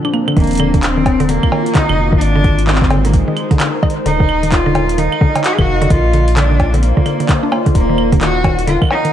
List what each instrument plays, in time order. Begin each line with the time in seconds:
Already playing: ambient pad A#2 F3 C4 D4
0.05 synth arpeggio sound D4, claves
0.13 synth arpeggio sound A#3, claves
0.28 synth arpeggio sound D3, claves
0.37 analog synth bass D#1, synth arpeggio sound D#3, ambient pad D#3, cello A#3, kick, closed hi-hat
0.40 closed hi-hat
0.44 closed hi-hat
0.47 closed hi-hat
0.51 closed hi-hat
0.53 ambient pad A#3, closed hi-hat
0.55 closed hi-hat
0.57 synth arpeggio sound D3, closed hi-hat, claves
0.74 synth arpeggio sound D3, kick, closed hi-hat
0.83 cello C4, ambient pad F4, clap, closed hi-hat
0.97 synth arpeggio sound D#3
1.06 kick, closed hi-hat, cowbell
1.15 ambient pad F#4
1.20 synth arpeggio sound D3, closed hi-hat
1.29 synth arpeggio sound D3, cello A#3, closed hi-hat
1.43 kick, claves
1.52 synth arpeggio sound D#3, cowbell
1.66 closed hi-hat
1.75 synth arpeggio sound D3, cello D#4, kick, clap, closed hi-hat
1.89 analog synth bass F1, synth arpeggio sound D3, claves
2.12 synth arpeggio sound D#3, cello D#4, kick
2.21 analog synth bass G#1, ambient pad G#3, cello D4, closed hi-hat
2.36 synth arpeggio sound D3
2.44 synth arpeggio sound D3, ambient pad D#4 A#4, kick, closed hi-hat
2.59 closed hi-hat
2.67 synth arpeggio sound D#3, cello C4, clap
2.75 ambient pad C5, clap
2.82 kick, clap
2.90 synth arpeggio sound D3, closed hi-hat, cowbell
3.05 synth arpeggio sound D3, cello A#3, closed hi-hat
3.13 cello G#3, kick, closed hi-hat
3.28 synth arpeggio sound D#3
3.37 closed hi-hat, claves
3.51 synth arpeggio sound D3, kick, closed hi-hat
3.60 synth arpeggio sound D3, clap, closed hi-hat, claves
3.83 synth arpeggio sound D#3, kick, cowbell, claves
3.90 closed hi-hat
4.06 analog synth bass D#1, synth arpeggio sound D3, cello D#4, closed hi-hat
4.20 synth arpeggio sound D3, kick
4.29 claves
4.43 synth arpeggio sound D#3, closed hi-hat
4.51 cello F4, ambient pad D#5, kick, clap, closed hi-hat
4.55 ambient pad F5
4.66 synth arpeggio sound D3
4.75 synth arpeggio sound D3, closed hi-hat, cowbell
4.89 closed hi-hat
4.98 synth arpeggio sound D#3, cello D#4, closed hi-hat
5.12 claves
5.21 synth arpeggio sound D3, kick
5.35 synth arpeggio sound D3, closed hi-hat, cowbell
5.44 cello F#4, clap, closed hi-hat
5.53 cello G#4
5.59 analog synth bass F1, synth arpeggio sound D#3, cello F#4, kick, claves
5.82 synth arpeggio sound D3, cello F#4, closed hi-hat
5.90 analog synth bass A#1, synth arpeggio sound D3, ambient pad A#3, cello F4, kick, closed hi-hat
6.01 ambient pad F4
6.13 synth arpeggio sound D3, closed hi-hat
6.25 ambient pad D5, closed hi-hat
6.31 ambient pad C5
6.37 synth arpeggio sound D3, cello D4, clap, closed hi-hat
6.51 synth arpeggio sound D3
6.60 kick, closed hi-hat, cowbell
6.74 synth arpeggio sound D3, cello C4, closed hi-hat
6.83 cello A#3, closed hi-hat
6.97 synth arpeggio sound D3, kick
7.06 synth arpeggio sound D3, closed hi-hat, claves
7.20 synth arpeggio sound D3, closed hi-hat
7.29 synth arpeggio sound D3, kick, clap, closed hi-hat, claves
7.43 synth arpeggio sound D4
7.52 synth arpeggio sound A#3, cowbell, claves
7.66 synth arpeggio sound D3, kick, closed hi-hat
7.75 analog synth bass D#1, cello A#3, ambient pad D#4, kick, closed hi-hat
7.89 synth arpeggio sound D#3, ambient pad F#5
7.96 ambient pad A#4, claves
8.12 synth arpeggio sound D3, kick, closed hi-hat
8.21 synth arpeggio sound D#3, cello F#4, clap, closed hi-hat
8.30 ambient pad F5
8.44 synth arpeggio sound D#3, kick, closed hi-hat, cowbell
8.59 closed hi-hat
8.67 synth arpeggio sound D3, cello F4, closed hi-hat
8.82 synth arpeggio sound D#3, kick, claves
8.83 claves
8.85 claves
8.87 claves
8.89 cello D#4, cowbell, claves
9.05 synth arpeggio sound D#3, closed hi-hat